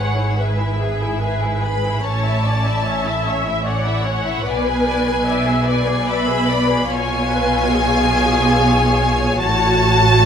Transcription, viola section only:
0.00 0.38 C#5 soft
0.37 0.79 B4 soft
0.78 1.20 G#4 soft
1.20 2.04 B4 soft
2.04 2.44 C#5 soft
2.43 2.85 D5 soft
2.85 3.66 E5 medium
3.66 4.07 D5 medium
4.05 4.47 C#5 medium
4.47 5.26 B4 medium
5.28 5.68 E5 medium
5.68 6.09 D5 soft
6.10 6.50 E5 medium
6.49 6.90 D5 medium
6.90 7.30 C#5 medium
7.30 7.72 B4 medium
7.70 9.39 G#4 medium
9.39 10.25 F#4 medium

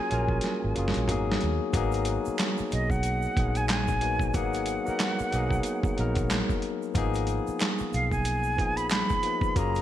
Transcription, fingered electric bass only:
0.12 0.38 A#1 medium
0.64 0.74 G#1 medium
0.77 0.92 F#1 medium
0.97 1.10 A#1 medium
1.10 1.36 G#1 medium
1.43 1.58 D#2 medium
1.75 2.17 G#1 loud
2.28 muted fingered electric bass stroke soft
2.60 muted fingered electric bass stroke soft
2.73 3.26 B1 medium
3.38 4.35 A#1 medium
4.35 4.77 G#1 medium
4.88 muted fingered electric bass stroke soft
5.20 muted fingered electric bass stroke soft
5.34 5.60 B1 medium
5.99 6.41 A#1 medium
6.96 7.38 G#1 loud
7.48 muted fingered electric bass stroke soft
7.81 muted fingered electric bass stroke soft
7.94 8.60 B1 medium
8.60 9.01 A#1 medium
9.57 9.82 F#1 loud

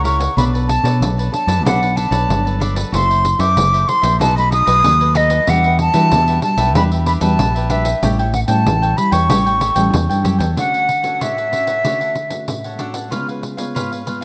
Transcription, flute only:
0.06 0.35 C#6 medium
0.37 0.44 B5 loud
0.68 1.03 A5 medium
1.33 1.62 A5 medium
1.66 1.98 F#5 medium
1.97 2.61 A5 medium
2.95 3.42 C6 loud
3.40 3.90 D6 loud
3.88 4.20 C6 loud
4.21 4.35 A5 loud
4.38 4.52 B5 loud
4.52 5.17 D#6 loud
5.16 5.51 D#5 medium
5.49 5.80 F#5 loud
5.81 6.40 A5 loud
6.44 6.73 A5 medium
6.76 6.83 B5 loud
7.07 7.13 B5 medium
7.21 7.72 A5 medium
7.71 8.07 E5 medium
8.34 8.40 F#5 medium
8.49 8.99 A5 medium
8.97 9.14 B5 medium
9.13 10.25 C#6 medium
10.58 11.15 F#5 loud
11.15 11.24 F#5 medium
11.22 12.81 E5 loud

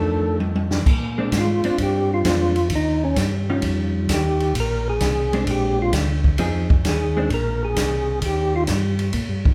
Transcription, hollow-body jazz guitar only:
0.00 0.38 D#3 medium
0.00 0.38 A3 medium
0.00 0.39 D4 medium
1.18 1.31 G#3 medium
1.18 1.31 C4 medium
1.18 1.32 D4 medium
1.65 2.22 C4 medium
1.65 2.22 D4 medium
2.25 2.53 G#3 medium
2.25 2.53 C4 medium
2.25 2.54 D4 medium
3.50 4.06 D#3 medium
3.50 4.06 G3 medium
3.50 4.07 C#4 medium
3.50 4.07 F4 medium
5.33 5.90 G#3 medium
5.33 5.91 C4 medium
5.33 5.91 D4 medium
6.39 6.67 F3 medium
6.39 6.67 C4 medium
6.39 6.68 D#4 medium
6.39 6.68 G#4 medium
7.17 7.29 G#3 medium
7.17 7.30 C4 medium
7.17 7.30 D4 medium

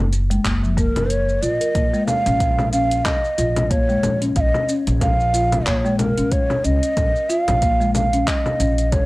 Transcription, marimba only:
0.30 0.43 G#3 medium
0.45 0.61 A#3 medium
0.63 0.77 F3 medium
0.77 0.88 A#3 loud
0.96 1.08 A#4 medium
1.43 1.53 F4 medium
1.61 1.69 A#4 medium
1.75 1.93 A#3 medium
1.94 2.07 G#3 medium
2.26 2.71 C#4 medium
2.73 3.37 C#4 medium
3.38 3.56 F4 medium
3.70 3.88 A#3 medium
3.89 4.03 G#3 medium
4.22 4.67 C#4 medium
4.68 5.32 C#4 medium
5.34 5.51 F4 medium
5.66 5.84 A#3 medium
5.85 5.98 G#3 loud
6.18 6.63 C#4 medium
6.64 7.28 C#4 medium
7.30 7.47 F4 medium
7.62 7.80 A#3 medium
7.80 7.94 G#3 loud
8.13 8.58 C#4 medium
8.60 9.06 C#4 medium

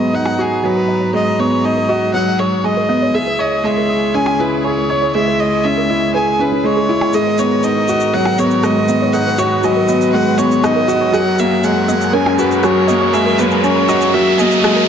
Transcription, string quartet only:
0.00 3.10 G#2 medium
0.00 3.10 F#3 medium
0.00 3.10 B3 medium
0.00 7.10 G#4 medium
0.00 3.10 A#5 medium
3.15 7.10 C#2 medium
3.15 7.10 C#3 medium
3.15 7.10 G#3 medium
3.15 7.10 E4 medium
7.15 11.10 G#2 medium
7.15 11.11 D#3 medium
7.15 11.11 B3 medium
7.15 11.10 F#4 medium
7.15 9.13 A#4 medium
9.14 11.12 B4 medium
11.14 14.88 F#2 medium
11.14 14.88 F#3 medium
11.14 14.88 C#4 medium
11.14 14.88 G#4 medium
11.14 14.88 A#4 medium

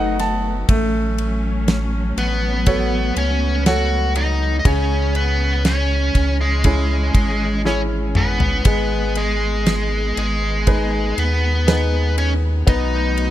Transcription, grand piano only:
0.00 0.65 B3 medium
0.00 0.71 A4 medium
0.00 0.71 B4 soft
0.00 0.71 D#5 medium
0.00 0.18 F#5 medium
0.20 0.66 A5 medium
0.70 4.61 A3 medium
2.67 3.63 F#4 medium
2.67 3.63 A4 soft
2.67 3.63 C#5 medium
3.66 4.62 F#4 soft
3.66 4.62 A4 soft
3.66 4.63 C#5 medium
4.65 8.61 C#3 medium
6.65 7.62 C#4 soft
6.65 7.62 E4 soft
6.65 7.62 G#4 medium
7.65 8.62 C#4 soft
7.65 8.63 E4 soft
7.65 8.63 G#4 soft
8.66 12.63 G#3 medium
10.67 11.64 D#4 medium
10.67 11.65 G#4 soft
10.67 11.65 B4 medium
11.67 12.64 D#4 soft
11.67 12.64 G#4 soft
11.67 12.65 B4 soft
12.67 13.30 B3 medium

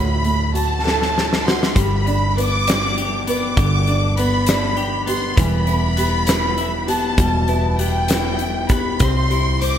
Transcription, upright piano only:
0.00 1.72 A2 medium
0.00 1.78 D3 medium
0.00 0.25 A3 medium
0.00 0.54 F#4 medium
0.00 0.21 A4 medium
0.25 1.42 A3 soft
0.54 1.45 F#4 medium
0.85 1.73 A4 medium
1.46 1.75 F#4 medium
1.76 3.53 G3 medium
2.07 3.24 D4 medium
2.38 3.27 B4 medium
2.68 3.84 D5 medium
3.29 4.44 B4 medium
3.58 5.34 D3 medium
3.89 5.04 D4 medium
4.19 5.35 B3 medium
4.48 5.35 D5 medium
5.08 5.37 G4 medium
5.39 7.15 E3 medium
5.68 6.84 B3 medium
5.98 6.86 G4 medium
6.28 7.45 B4 medium
6.87 7.78 G4 medium
7.18 8.96 B2 medium
7.49 8.66 B3 medium
7.80 8.69 G4 medium
8.10 8.98 B4 medium
8.71 9.00 G4 medium
9.01 9.78 C3 medium
9.30 9.78 G3 medium
9.61 9.78 C4 medium

